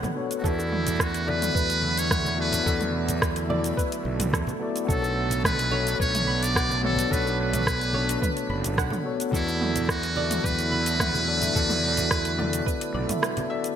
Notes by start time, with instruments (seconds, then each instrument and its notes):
Already playing: analog synth pad A3 B3 D4, tine electric piano B3 D4 F#4 A4 C#5, synth arpeggio sound F#5
0.03 mid tom, high bongo, high conga, low conga, cabasa
0.15 tine electric piano B3 D4 F#4 A4 C#5
0.31 closed hi-hat, cabasa
0.38 tine electric piano B3, muted trumpet F#4
0.43 fingered electric bass E2, analog synth pad D3 F#3 A3 E4, tine electric piano E4 F#4 A4, muted trumpet E4, synth arpeggio sound A4, kick, high conga, cabasa
0.47 tine electric piano D5
0.59 high bongo, cabasa
0.72 mid tom
0.87 closed hi-hat, high conga, low conga, cabasa
0.99 muted trumpet F#4, kick, cross-stick, cabasa
1.14 closed hi-hat, cabasa
1.26 tine electric piano B3 E4 F#4 A4 D5, synth arpeggio sound D5, high bongo, high conga
1.30 muted trumpet B4
1.42 closed hi-hat, mid tom, cabasa
1.55 fingered electric bass E2, synth arpeggio sound B4, kick, cabasa
1.70 closed hi-hat, cabasa
1.82 synth arpeggio sound B5, high conga
1.97 muted trumpet C#5, closed hi-hat, cabasa
2.11 synth arpeggio sound F#5, kick, cross-stick, mid tom, cabasa
2.25 high conga, cabasa
2.36 tine electric piano B3 E4 F#4 A4 D5
2.41 muted trumpet B4
2.52 closed hi-hat, low conga, cabasa
2.63 fingered electric bass E2, tine electric piano B3 E4 F#4, synth arpeggio sound A4, kick, high conga
2.67 tine electric piano A4 D5, cabasa
2.80 closed hi-hat, mid tom, high bongo, cabasa
3.09 closed hi-hat, high conga, low conga, cabasa
3.22 kick, cross-stick, cabasa
3.36 closed hi-hat, cabasa
3.48 tine electric piano B3 E4 F#4 A4 D5, synth arpeggio sound D5, mid tom, high bongo, high conga
3.64 closed hi-hat, cabasa
3.77 synth arpeggio sound B4, kick, cabasa
3.92 closed hi-hat, cabasa
4.05 fingered electric bass B1, high conga
4.20 closed hi-hat, mid tom, low conga, cabasa
4.33 fingered electric bass E2, synth arpeggio sound A4, kick, cross-stick, cabasa
4.47 high bongo, high conga, low conga, cabasa
4.59 tine electric piano B3 E4 F#4 A4 D5
4.76 closed hi-hat, cabasa
4.85 fingered electric bass B1, tine electric piano B3 D4 F#4, analog synth pad B3 D4, synth arpeggio sound A4, kick, high conga
4.90 tine electric piano A4 C#5, muted trumpet A4, cabasa
5.02 high bongo, cabasa
5.30 closed hi-hat, high conga, low conga, cabasa
5.44 muted trumpet B4, kick, cross-stick, mid tom, cabasa
5.59 closed hi-hat, cabasa
5.70 tine electric piano B3 D4 F#4 A4 C#5, synth arpeggio sound C#5, high bongo, high conga
5.87 closed hi-hat, cabasa
5.99 fingered electric bass B1, synth arpeggio sound B4, muted trumpet C#5, kick, cabasa
6.15 closed hi-hat, mid tom, cabasa
6.27 synth arpeggio sound B5, high conga
6.43 muted trumpet D5, closed hi-hat, cabasa
6.55 synth arpeggio sound F#5, kick, cross-stick, cabasa
6.69 high conga, cabasa
6.81 tine electric piano B3 D4 F#4 A4 C#5, muted trumpet A4, mid tom
6.97 closed hi-hat, low conga, cabasa
7.07 fingered electric bass B1, tine electric piano B3 D4 F#4, synth arpeggio sound A4, kick
7.12 tine electric piano A4 C#5, muted trumpet B4, high conga, cabasa
7.25 high bongo, cabasa
7.41 muted trumpet B4
7.53 closed hi-hat, mid tom, high conga, low conga, cabasa
7.67 kick, cross-stick, cabasa
7.81 closed hi-hat, cabasa
7.92 tine electric piano B3 D4 F#4 A4 C#5, synth arpeggio sound C#5, high bongo, high conga
8.09 closed hi-hat, cabasa
8.22 synth arpeggio sound B4, kick, mid tom, cabasa
8.37 closed hi-hat, cabasa
8.49 fingered electric bass F#1, synth arpeggio sound B5, high conga
8.64 closed hi-hat, low conga, cabasa
8.78 fingered electric bass B1, synth arpeggio sound F#5, kick, cross-stick, cabasa
8.90 mid tom, high bongo, high conga, low conga, cabasa
9.03 tine electric piano B3 D4 F#4 A4 C#5
9.20 closed hi-hat, cabasa
9.30 fingered electric bass E2, analog synth pad D3 F#3 A3 E4, tine electric piano B3 E4 F#4, synth arpeggio sound A4, kick, high conga
9.34 muted trumpet E4, tine electric piano A4 D5, cabasa
9.47 high bongo, cabasa
9.61 mid tom
9.75 closed hi-hat, high conga, low conga, cabasa
9.89 muted trumpet F#4, kick, cross-stick, cabasa
10.03 closed hi-hat, cabasa
10.15 tine electric piano B3 E4 F#4 A4 D5, synth arpeggio sound D5, high bongo, high conga
10.31 closed hi-hat, mid tom, cabasa
10.44 fingered electric bass E2, synth arpeggio sound B4, muted trumpet B4, kick, cabasa
10.59 closed hi-hat, cabasa
10.72 synth arpeggio sound B5, high conga
10.86 closed hi-hat, cabasa
10.99 synth arpeggio sound F#5, kick, cross-stick, mid tom, cabasa
11.14 high conga, cabasa
11.25 tine electric piano B3 E4 F#4 A4 D5
11.42 closed hi-hat, low conga, cabasa
11.52 fingered electric bass E2, tine electric piano B3 E4 F#4, synth arpeggio sound A4, kick
11.56 tine electric piano A4 D5, high conga, cabasa
11.69 mid tom, high bongo, cabasa
11.97 closed hi-hat, high conga, low conga, cabasa
12.11 kick, cross-stick, cabasa
12.25 closed hi-hat, cabasa
12.37 tine electric piano B3 E4 F#4 A4 D5, synth arpeggio sound D5, mid tom, high bongo, high conga
12.53 closed hi-hat, cabasa
12.66 synth arpeggio sound B4, kick, cabasa
12.81 closed hi-hat, cabasa
12.94 fingered electric bass B1, synth arpeggio sound D5, high conga
13.07 tine electric piano B3 E4 F#4 A4 E5, closed hi-hat, mid tom, low conga, cabasa
13.22 synth arpeggio sound B4, cross-stick, cabasa
13.37 closed hi-hat, high bongo, high conga, low conga, cabasa
13.48 tine electric piano B3 E4 F#4 A4 D5, synth arpeggio sound E5
13.64 closed hi-hat, cabasa